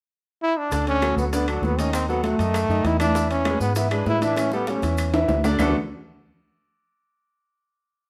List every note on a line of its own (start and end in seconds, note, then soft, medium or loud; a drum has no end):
0.42 0.59 E4 loud
0.57 0.87 D4 medium
0.71 1.14 D2 medium
0.71 0.96 D3 medium
0.71 0.97 D4 medium
0.71 0.97 D5 medium
0.71 high bongo medium
0.71 high conga soft
0.71 high timbale medium
0.71 maracas medium
0.87 1.16 C#4 loud
0.87 high bongo soft
0.87 high conga soft
0.87 high timbale medium
0.87 maracas soft
1.02 1.27 F#3 medium
1.02 1.27 F#4 medium
1.02 1.27 A4 medium
1.02 high bongo medium
1.02 high conga loud
1.02 high timbale medium
1.02 claves medium
1.02 maracas soft
1.16 1.59 D2 medium
1.16 1.25 B3 medium
1.16 high conga soft
1.16 maracas medium
1.32 1.45 D3 medium
1.32 1.47 B3 medium
1.32 1.45 D4 medium
1.32 1.46 D5 medium
1.32 high bongo medium
1.32 high conga soft
1.32 high timbale medium
1.32 maracas medium
1.48 1.73 F#3 medium
1.48 1.66 D4 medium
1.48 1.73 F#4 medium
1.48 1.74 A4 medium
1.48 high bongo soft
1.48 high conga soft
1.48 high timbale medium
1.48 claves medium
1.48 maracas soft
1.62 2.33 D#2 loud
1.62 1.80 B3 medium
1.62 high bongo soft
1.62 low bongo medium
1.62 high conga medium
1.62 maracas soft
1.78 2.04 D#3 medium
1.78 1.93 C#4 medium
1.78 2.04 D#4 medium
1.78 2.04 D#5 medium
1.78 high bongo soft
1.78 high conga soft
1.78 high timbale medium
1.78 maracas medium
1.93 2.08 C4 medium
1.93 high bongo medium
1.93 high conga soft
1.93 high timbale medium
1.93 claves medium
1.93 maracas medium
2.09 2.34 F#3 medium
2.09 2.23 B3 medium
2.09 2.34 F#4 medium
2.09 2.34 A4 medium
2.09 high bongo soft
2.09 high conga soft
2.09 maracas soft
2.24 2.87 A3 medium
2.24 high bongo medium
2.24 high conga loud
2.24 high timbale medium
2.24 maracas soft
2.39 2.67 F#2 medium
2.39 2.64 D#3 medium
2.39 2.64 D#4 medium
2.39 2.65 D#5 medium
2.39 high conga soft
2.39 high timbale medium
2.39 maracas medium
2.54 high bongo medium
2.54 high conga soft
2.54 high timbale medium
2.54 claves medium
2.54 maracas medium
2.69 2.83 F#2 medium
2.69 2.95 D#3 medium
2.69 2.95 D#4 medium
2.69 2.95 D#5 medium
2.69 high bongo soft
2.69 maracas soft
2.84 3.55 E2 medium
2.84 2.99 E4 loud
2.84 high bongo soft
2.84 low bongo medium
2.84 high conga medium
2.84 high timbale medium
2.84 maracas soft
2.99 3.12 E3 medium
2.99 3.28 D4 medium
2.99 3.12 E4 medium
2.99 3.13 E5 medium
2.99 high bongo soft
2.99 high conga medium
2.99 high timbale medium
2.99 claves medium
2.99 maracas medium
3.15 3.41 E3 medium
3.15 3.41 E4 medium
3.15 3.41 E5 medium
3.15 high bongo medium
3.15 high conga soft
3.15 high timbale medium
3.15 maracas medium
3.30 3.59 C#4 medium
3.30 high bongo soft
3.30 high timbale medium
3.30 maracas soft
3.45 3.71 G#3 medium
3.45 3.71 G#4 medium
3.45 3.71 B4 medium
3.45 high bongo medium
3.45 high conga medium
3.45 high timbale medium
3.45 claves medium
3.45 maracas soft
3.60 4.03 G#2 medium
3.60 3.76 B3 medium
3.60 high conga soft
3.60 maracas medium
3.75 3.89 E3 medium
3.75 3.91 B3 medium
3.75 3.89 E4 medium
3.75 3.89 E5 medium
3.75 high bongo medium
3.75 high conga soft
3.75 high timbale medium
3.75 maracas medium
3.91 4.17 G#3 medium
3.91 4.06 D4 medium
3.91 4.17 G#4 medium
3.91 4.17 B4 medium
3.91 high bongo soft
3.91 high conga soft
3.91 high timbale medium
3.91 claves medium
3.91 maracas soft
4.06 4.77 A2 medium
4.06 4.24 E4 loud
4.06 high bongo soft
4.06 low bongo medium
4.06 high conga medium
4.06 low timbale medium
4.06 maracas soft
4.21 4.47 E3 medium
4.21 4.40 D4 medium
4.21 4.47 E4 medium
4.21 4.47 E5 medium
4.21 high bongo soft
4.21 high conga soft
4.21 high timbale medium
4.21 maracas medium
4.37 4.53 C#4 loud
4.37 high bongo medium
4.37 high conga soft
4.37 high timbale medium
4.37 claves medium
4.37 maracas medium
4.52 4.78 G3 medium
4.52 4.67 B3 medium
4.52 4.78 G4 medium
4.52 4.78 A4 medium
4.52 high bongo medium
4.52 high conga soft
4.52 maracas soft
4.67 5.25 C#4 medium
4.67 high bongo medium
4.67 high conga loud
4.67 high timbale medium
4.67 maracas soft
4.82 5.26 E2 medium
4.82 5.08 E3 medium
4.82 5.08 E4 medium
4.82 5.09 E5 medium
4.82 low bongo medium
4.82 high conga soft
4.82 high timbale medium
4.82 maracas medium
4.98 high conga soft
4.98 high timbale medium
4.98 claves medium
4.98 maracas medium
5.13 5.39 E3 medium
5.13 5.39 E4 medium
5.13 5.39 E5 medium
5.13 high conga soft
5.13 high timbale medium
5.13 maracas soft
5.28 5.56 D2 medium
5.28 low bongo medium
5.28 high conga medium
5.28 low timbale medium
5.28 maracas soft
5.44 5.57 D3 medium
5.44 5.57 D4 medium
5.44 5.58 D5 medium
5.44 low bongo medium
5.44 high conga medium
5.44 low timbale medium
5.44 claves medium
5.44 maracas medium
5.59 5.73 D2 medium
5.59 5.74 D3 medium
5.59 5.74 A3 medium
5.59 5.74 B3 medium
5.59 5.74 D4 medium
5.59 5.74 F#4 medium
5.59 5.74 A4 loud
5.59 low bongo medium
5.59 low conga loud
5.59 low timbale loud
5.59 claves medium
5.59 maracas medium